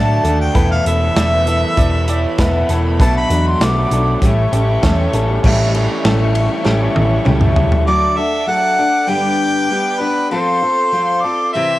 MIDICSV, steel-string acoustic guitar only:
0, 0, Header, 1, 2, 480
1, 0, Start_track
1, 0, Tempo, 610376
1, 427, Time_signature, 4, 2, 24, 8
1, 9272, End_track
2, 0, Start_track
2, 0, Title_t, "Steel-string acoustic guitar"
2, 0, Program_c, 0, 25
2, 0, Note_on_c, 0, 54, 61
2, 0, Note_on_c, 0, 57, 61
2, 0, Note_on_c, 0, 62, 63
2, 0, Note_on_c, 0, 69, 73
2, 179, Note_off_c, 0, 69, 0
2, 183, Note_off_c, 0, 54, 0
2, 186, Note_off_c, 0, 57, 0
2, 187, Note_off_c, 0, 62, 0
2, 189, Note_on_c, 0, 69, 55
2, 197, Note_on_c, 0, 62, 51
2, 204, Note_on_c, 0, 57, 44
2, 428, Note_off_c, 0, 69, 0
2, 430, Note_off_c, 0, 57, 0
2, 430, Note_on_c, 0, 52, 77
2, 432, Note_off_c, 0, 62, 0
2, 433, Note_on_c, 0, 59, 80
2, 436, Note_on_c, 0, 64, 83
2, 438, Note_on_c, 0, 69, 87
2, 669, Note_off_c, 0, 52, 0
2, 671, Note_off_c, 0, 59, 0
2, 672, Note_off_c, 0, 64, 0
2, 673, Note_off_c, 0, 69, 0
2, 682, Note_on_c, 0, 69, 49
2, 690, Note_on_c, 0, 64, 48
2, 692, Note_on_c, 0, 59, 41
2, 915, Note_off_c, 0, 59, 0
2, 915, Note_off_c, 0, 69, 0
2, 920, Note_off_c, 0, 64, 0
2, 921, Note_on_c, 0, 52, 57
2, 925, Note_on_c, 0, 59, 62
2, 931, Note_on_c, 0, 64, 58
2, 936, Note_on_c, 0, 69, 64
2, 1147, Note_off_c, 0, 69, 0
2, 1155, Note_off_c, 0, 64, 0
2, 1156, Note_off_c, 0, 52, 0
2, 1157, Note_off_c, 0, 59, 0
2, 1157, Note_on_c, 0, 69, 51
2, 1164, Note_on_c, 0, 64, 48
2, 1175, Note_on_c, 0, 59, 39
2, 1875, Note_off_c, 0, 59, 0
2, 1875, Note_on_c, 0, 52, 59
2, 1878, Note_off_c, 0, 64, 0
2, 1885, Note_on_c, 0, 59, 68
2, 1887, Note_on_c, 0, 64, 66
2, 1888, Note_off_c, 0, 69, 0
2, 1891, Note_on_c, 0, 69, 68
2, 2112, Note_off_c, 0, 69, 0
2, 2114, Note_off_c, 0, 52, 0
2, 2118, Note_off_c, 0, 59, 0
2, 2120, Note_off_c, 0, 64, 0
2, 2121, Note_on_c, 0, 69, 62
2, 2128, Note_on_c, 0, 64, 62
2, 2139, Note_on_c, 0, 59, 47
2, 2357, Note_off_c, 0, 69, 0
2, 2360, Note_off_c, 0, 64, 0
2, 2365, Note_off_c, 0, 59, 0
2, 2366, Note_on_c, 0, 47, 74
2, 2368, Note_on_c, 0, 57, 88
2, 2369, Note_on_c, 0, 54, 78
2, 2371, Note_on_c, 0, 69, 89
2, 2373, Note_on_c, 0, 62, 89
2, 2583, Note_off_c, 0, 69, 0
2, 2593, Note_on_c, 0, 69, 53
2, 2596, Note_off_c, 0, 62, 0
2, 2598, Note_off_c, 0, 57, 0
2, 2600, Note_off_c, 0, 47, 0
2, 2601, Note_off_c, 0, 54, 0
2, 2605, Note_on_c, 0, 62, 50
2, 2608, Note_on_c, 0, 57, 43
2, 2833, Note_off_c, 0, 69, 0
2, 2839, Note_off_c, 0, 62, 0
2, 2840, Note_off_c, 0, 57, 0
2, 2845, Note_on_c, 0, 54, 57
2, 2849, Note_on_c, 0, 57, 59
2, 2855, Note_on_c, 0, 62, 65
2, 2861, Note_on_c, 0, 69, 66
2, 3076, Note_off_c, 0, 69, 0
2, 3079, Note_off_c, 0, 54, 0
2, 3081, Note_off_c, 0, 57, 0
2, 3084, Note_off_c, 0, 62, 0
2, 3085, Note_on_c, 0, 69, 54
2, 3095, Note_on_c, 0, 62, 46
2, 3102, Note_on_c, 0, 57, 43
2, 3318, Note_off_c, 0, 57, 0
2, 3319, Note_off_c, 0, 69, 0
2, 3322, Note_on_c, 0, 45, 74
2, 3324, Note_off_c, 0, 62, 0
2, 3324, Note_on_c, 0, 52, 69
2, 3325, Note_on_c, 0, 55, 75
2, 3327, Note_on_c, 0, 57, 75
2, 3332, Note_on_c, 0, 61, 78
2, 3335, Note_on_c, 0, 69, 75
2, 3798, Note_off_c, 0, 45, 0
2, 3799, Note_off_c, 0, 52, 0
2, 3800, Note_off_c, 0, 55, 0
2, 3801, Note_off_c, 0, 57, 0
2, 3803, Note_off_c, 0, 61, 0
2, 3805, Note_off_c, 0, 69, 0
2, 3808, Note_on_c, 0, 55, 58
2, 3814, Note_on_c, 0, 57, 72
2, 3816, Note_on_c, 0, 61, 68
2, 3823, Note_on_c, 0, 69, 70
2, 4035, Note_off_c, 0, 69, 0
2, 4039, Note_off_c, 0, 61, 0
2, 4041, Note_off_c, 0, 55, 0
2, 4044, Note_off_c, 0, 57, 0
2, 4045, Note_on_c, 0, 69, 68
2, 4049, Note_on_c, 0, 61, 61
2, 4055, Note_on_c, 0, 57, 55
2, 4061, Note_on_c, 0, 55, 53
2, 4279, Note_off_c, 0, 69, 0
2, 4280, Note_off_c, 0, 55, 0
2, 4280, Note_off_c, 0, 57, 0
2, 4281, Note_off_c, 0, 61, 0
2, 4283, Note_on_c, 0, 45, 83
2, 4287, Note_on_c, 0, 52, 92
2, 4289, Note_on_c, 0, 57, 94
2, 4290, Note_on_c, 0, 55, 85
2, 4291, Note_on_c, 0, 61, 92
2, 4297, Note_on_c, 0, 69, 96
2, 4509, Note_off_c, 0, 69, 0
2, 4514, Note_off_c, 0, 61, 0
2, 4517, Note_off_c, 0, 57, 0
2, 4518, Note_on_c, 0, 69, 59
2, 4519, Note_off_c, 0, 45, 0
2, 4520, Note_off_c, 0, 52, 0
2, 4522, Note_off_c, 0, 55, 0
2, 4524, Note_on_c, 0, 61, 51
2, 4527, Note_on_c, 0, 57, 54
2, 4533, Note_on_c, 0, 55, 43
2, 4745, Note_off_c, 0, 55, 0
2, 4753, Note_off_c, 0, 57, 0
2, 4754, Note_on_c, 0, 55, 61
2, 4755, Note_off_c, 0, 61, 0
2, 4756, Note_off_c, 0, 69, 0
2, 4762, Note_on_c, 0, 57, 66
2, 4764, Note_on_c, 0, 61, 73
2, 4770, Note_on_c, 0, 69, 66
2, 5217, Note_off_c, 0, 55, 0
2, 5221, Note_off_c, 0, 57, 0
2, 5225, Note_off_c, 0, 69, 0
2, 5225, Note_on_c, 0, 45, 84
2, 5226, Note_off_c, 0, 61, 0
2, 5226, Note_on_c, 0, 52, 87
2, 5227, Note_on_c, 0, 55, 91
2, 5231, Note_on_c, 0, 57, 87
2, 5234, Note_on_c, 0, 69, 89
2, 5236, Note_on_c, 0, 61, 95
2, 5692, Note_off_c, 0, 55, 0
2, 5694, Note_off_c, 0, 57, 0
2, 5701, Note_off_c, 0, 61, 0
2, 5702, Note_on_c, 0, 55, 74
2, 5703, Note_on_c, 0, 57, 70
2, 5706, Note_off_c, 0, 69, 0
2, 5709, Note_off_c, 0, 45, 0
2, 5710, Note_off_c, 0, 52, 0
2, 5711, Note_on_c, 0, 61, 73
2, 5715, Note_on_c, 0, 69, 71
2, 6184, Note_off_c, 0, 57, 0
2, 6187, Note_off_c, 0, 55, 0
2, 6190, Note_on_c, 0, 50, 84
2, 6191, Note_off_c, 0, 69, 0
2, 6192, Note_off_c, 0, 61, 0
2, 6193, Note_on_c, 0, 54, 85
2, 6194, Note_on_c, 0, 57, 79
2, 6195, Note_on_c, 0, 62, 88
2, 6201, Note_on_c, 0, 69, 86
2, 6416, Note_off_c, 0, 69, 0
2, 6421, Note_off_c, 0, 62, 0
2, 6425, Note_on_c, 0, 69, 58
2, 6426, Note_off_c, 0, 57, 0
2, 6430, Note_on_c, 0, 62, 47
2, 6431, Note_off_c, 0, 50, 0
2, 6433, Note_off_c, 0, 54, 0
2, 6436, Note_on_c, 0, 57, 42
2, 6652, Note_off_c, 0, 57, 0
2, 6656, Note_off_c, 0, 62, 0
2, 6657, Note_on_c, 0, 54, 55
2, 6661, Note_on_c, 0, 57, 64
2, 6663, Note_off_c, 0, 69, 0
2, 6666, Note_on_c, 0, 62, 60
2, 6673, Note_on_c, 0, 69, 65
2, 6897, Note_off_c, 0, 69, 0
2, 6901, Note_off_c, 0, 62, 0
2, 6904, Note_off_c, 0, 54, 0
2, 6906, Note_off_c, 0, 57, 0
2, 6906, Note_on_c, 0, 69, 54
2, 6910, Note_on_c, 0, 62, 50
2, 6917, Note_on_c, 0, 57, 49
2, 7131, Note_on_c, 0, 43, 70
2, 7134, Note_off_c, 0, 62, 0
2, 7136, Note_off_c, 0, 57, 0
2, 7136, Note_on_c, 0, 50, 74
2, 7139, Note_on_c, 0, 59, 75
2, 7140, Note_on_c, 0, 55, 75
2, 7144, Note_on_c, 0, 62, 78
2, 7145, Note_off_c, 0, 69, 0
2, 7148, Note_on_c, 0, 67, 83
2, 7615, Note_off_c, 0, 55, 0
2, 7621, Note_off_c, 0, 43, 0
2, 7622, Note_off_c, 0, 59, 0
2, 7623, Note_off_c, 0, 50, 0
2, 7624, Note_on_c, 0, 55, 62
2, 7627, Note_off_c, 0, 62, 0
2, 7629, Note_off_c, 0, 67, 0
2, 7631, Note_on_c, 0, 59, 69
2, 7635, Note_on_c, 0, 62, 61
2, 7643, Note_on_c, 0, 67, 67
2, 7850, Note_off_c, 0, 67, 0
2, 7853, Note_off_c, 0, 62, 0
2, 7859, Note_on_c, 0, 67, 58
2, 7860, Note_off_c, 0, 59, 0
2, 7862, Note_on_c, 0, 62, 54
2, 7863, Note_off_c, 0, 55, 0
2, 7869, Note_on_c, 0, 59, 52
2, 7872, Note_on_c, 0, 55, 49
2, 8104, Note_off_c, 0, 67, 0
2, 8106, Note_off_c, 0, 55, 0
2, 8106, Note_off_c, 0, 62, 0
2, 8109, Note_off_c, 0, 59, 0
2, 8109, Note_on_c, 0, 53, 80
2, 8112, Note_on_c, 0, 60, 78
2, 8113, Note_on_c, 0, 65, 82
2, 8120, Note_on_c, 0, 69, 86
2, 8343, Note_off_c, 0, 69, 0
2, 8348, Note_off_c, 0, 65, 0
2, 8349, Note_off_c, 0, 53, 0
2, 8351, Note_off_c, 0, 60, 0
2, 8352, Note_on_c, 0, 69, 53
2, 8358, Note_on_c, 0, 65, 45
2, 8366, Note_on_c, 0, 60, 45
2, 8586, Note_off_c, 0, 60, 0
2, 8589, Note_on_c, 0, 53, 58
2, 8590, Note_off_c, 0, 65, 0
2, 8590, Note_off_c, 0, 69, 0
2, 8595, Note_on_c, 0, 60, 67
2, 8599, Note_on_c, 0, 65, 63
2, 8607, Note_on_c, 0, 69, 70
2, 8827, Note_off_c, 0, 69, 0
2, 8829, Note_off_c, 0, 53, 0
2, 8832, Note_off_c, 0, 60, 0
2, 8834, Note_off_c, 0, 65, 0
2, 8837, Note_on_c, 0, 69, 57
2, 8843, Note_on_c, 0, 65, 52
2, 8850, Note_on_c, 0, 60, 47
2, 9072, Note_off_c, 0, 69, 0
2, 9076, Note_off_c, 0, 65, 0
2, 9077, Note_off_c, 0, 60, 0
2, 9082, Note_on_c, 0, 52, 75
2, 9083, Note_on_c, 0, 48, 72
2, 9086, Note_on_c, 0, 60, 70
2, 9091, Note_on_c, 0, 67, 84
2, 9092, Note_on_c, 0, 64, 88
2, 9272, Note_off_c, 0, 48, 0
2, 9272, Note_off_c, 0, 52, 0
2, 9272, Note_off_c, 0, 60, 0
2, 9272, Note_off_c, 0, 64, 0
2, 9272, Note_off_c, 0, 67, 0
2, 9272, End_track
0, 0, End_of_file